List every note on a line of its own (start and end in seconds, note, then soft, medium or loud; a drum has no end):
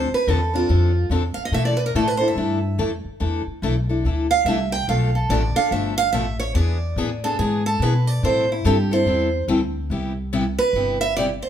0.00 0.13 C5 medium
0.12 0.30 B4 medium
0.12 muted upright bass stroke soft
0.27 0.68 E2 medium
0.27 0.39 D3 medium
0.27 0.39 F3 medium
0.27 0.39 C4 medium
0.27 0.40 D4 medium
0.27 0.39 A4 medium
0.27 0.54 A4 medium
0.54 0.68 C4 soft
0.54 0.69 D4 medium
0.54 1.08 F4 medium
0.54 0.69 A4 medium
0.69 1.09 F2 medium
0.69 0.90 D3 medium
0.69 0.90 F3 medium
0.69 0.90 C4 medium
0.69 0.91 D4 medium
0.69 0.91 A4 medium
1.10 1.34 E2 medium
1.10 1.22 D3 medium
1.10 1.23 F3 medium
1.10 1.23 C4 medium
1.10 1.22 D4 medium
1.10 1.23 A4 medium
1.34 1.43 F5 medium
1.34 muted upright bass stroke soft
1.45 1.53 D#5 medium
1.52 1.93 B2 medium
1.52 1.74 E3 medium
1.52 1.74 A3 medium
1.52 1.74 D4 medium
1.52 1.74 E4 medium
1.52 1.74 A4 medium
1.52 1.65 E5 loud
1.65 1.78 D5 medium
1.77 1.85 B4 medium
1.86 1.94 A#4 medium
1.95 2.35 A2 medium
1.95 2.06 E3 medium
1.95 2.06 A3 medium
1.95 2.06 D4 medium
1.95 2.06 E4 loud
1.95 2.07 A4 medium
1.95 2.08 A4 medium
2.08 2.17 B4 medium
2.17 2.36 E4 medium
2.17 2.36 A4 medium
2.17 2.27 C5 medium
2.22 2.36 D4 soft
2.28 2.87 E5 medium
2.36 2.77 G2 medium
2.36 2.58 E3 medium
2.36 2.58 A3 medium
2.36 2.58 D4 medium
2.36 2.58 E4 medium
2.36 2.58 A4 medium
2.78 3.02 F2 medium
2.78 2.90 E3 medium
2.78 2.90 A3 medium
2.78 2.90 D4 medium
2.78 2.90 E4 medium
2.78 2.90 A4 medium
3.04 muted upright bass stroke soft
3.20 3.45 E2 medium
3.20 3.41 E3 medium
3.20 3.41 A3 medium
3.20 3.41 D4 medium
3.20 3.42 E4 medium
3.20 3.42 A4 medium
3.47 muted upright bass stroke soft
3.62 4.03 B1 medium
3.62 3.74 E3 medium
3.62 3.74 A3 medium
3.62 3.74 D4 medium
3.62 3.74 E4 loud
3.62 3.74 A4 medium
3.89 4.05 D4 soft
3.89 4.04 E4 soft
3.89 4.04 A4 medium
4.04 4.44 D2 medium
4.04 4.26 E3 medium
4.04 4.26 A3 medium
4.04 4.26 D4 medium
4.04 4.26 E4 medium
4.04 4.26 A4 medium
4.31 4.46 F5 loud
4.45 4.86 C2 medium
4.45 4.58 E3 medium
4.45 4.58 A3 medium
4.45 4.58 D4 medium
4.45 4.58 E4 medium
4.45 4.58 A4 medium
4.45 4.71 E5 medium
4.72 4.87 G5 loud
4.87 5.28 B1 medium
4.87 5.09 B2 medium
4.87 5.09 F3 medium
4.87 5.09 A3 medium
4.87 5.09 D4 medium
4.87 5.10 A4 medium
4.87 5.13 F5 medium
5.15 5.30 A4 medium
5.29 5.54 A1 loud
5.29 5.41 B2 medium
5.29 5.41 F3 loud
5.29 5.41 A3 medium
5.29 5.41 D4 loud
5.29 5.41 A4 loud
5.29 5.55 D5 medium
5.55 5.71 A3 soft
5.55 5.71 D4 medium
5.55 5.71 A4 medium
5.55 5.71 F5 loud
5.55 muted upright bass stroke soft
5.71 6.12 G1 medium
5.71 5.93 B2 medium
5.71 5.93 F3 medium
5.71 5.93 A3 medium
5.71 5.93 D4 medium
5.71 5.93 A4 medium
5.71 5.97 E5 medium
5.98 6.12 F5 loud
6.13 6.54 A1 medium
6.13 6.25 B2 medium
6.13 6.25 F3 medium
6.13 6.25 A3 medium
6.13 6.25 D4 loud
6.13 6.25 A4 loud
6.13 6.38 E5 medium
6.39 6.55 C#5 medium
6.54 6.95 E2 loud
6.54 6.76 E3 medium
6.54 6.76 B3 medium
6.54 6.77 D4 medium
6.54 6.77 G#4 medium
6.54 7.19 D5 medium
6.96 7.37 A2 medium
6.96 7.08 E3 medium
6.96 7.09 B3 loud
6.96 7.09 D4 loud
6.96 7.09 G#4 loud
7.24 7.39 B3 soft
7.24 7.39 D4 soft
7.24 7.38 G#4 medium
7.24 7.39 A4 medium
7.39 7.79 G#2 medium
7.39 7.61 E3 medium
7.39 7.61 B3 medium
7.39 7.61 D4 medium
7.39 7.64 G#4 medium
7.39 7.61 G#4 medium
7.66 7.81 A4 loud
7.80 8.21 B2 medium
7.80 7.92 E3 medium
7.80 7.93 B3 loud
7.80 7.93 D4 medium
7.80 7.93 G#4 loud
7.80 8.07 B4 medium
8.07 8.22 D5 medium
8.23 8.63 A2 medium
8.23 8.44 E3 medium
8.23 8.44 G3 medium
8.23 8.44 C4 medium
8.23 8.44 E4 medium
8.23 8.45 A4 medium
8.23 8.49 C5 medium
8.52 8.66 E4 medium
8.65 9.05 G2 loud
8.65 8.76 E3 medium
8.65 8.76 G3 medium
8.65 8.76 C4 loud
8.65 8.76 E4 loud
8.65 8.91 G4 medium
8.65 8.76 A4 loud
8.91 9.06 C4 medium
8.91 9.06 E4 medium
8.91 9.06 A4 medium
8.91 9.45 C5 medium
9.06 9.47 E2 medium
9.06 9.27 E3 medium
9.06 9.27 G3 medium
9.06 9.28 C4 medium
9.06 9.28 E4 medium
9.06 9.28 A4 medium
9.48 9.89 D2 medium
9.48 9.59 E3 loud
9.48 9.60 G3 medium
9.48 9.59 C4 medium
9.48 9.60 E4 loud
9.48 9.60 A4 loud
9.90 10.57 C2 medium
9.90 10.12 C3 medium
9.90 10.12 G3 medium
9.90 10.12 B3 medium
9.90 10.12 E4 medium
9.90 10.12 G4 medium
10.33 10.44 C3 loud
10.33 10.44 G3 medium
10.33 10.44 B3 medium
10.33 10.44 E4 loud
10.33 10.44 G4 loud
10.59 11.00 B4 medium
10.73 11.40 G1 medium
10.73 10.96 C3 medium
10.73 10.96 G3 medium
10.73 10.96 B3 medium
10.73 10.96 E4 medium
10.73 10.96 G4 medium
11.01 11.15 E5 loud
11.17 11.28 C3 medium
11.17 11.28 G3 medium
11.17 11.28 B3 medium
11.17 11.28 E4 medium
11.17 11.28 G4 medium
11.17 11.23 D5 medium
11.42 11.49 C5 medium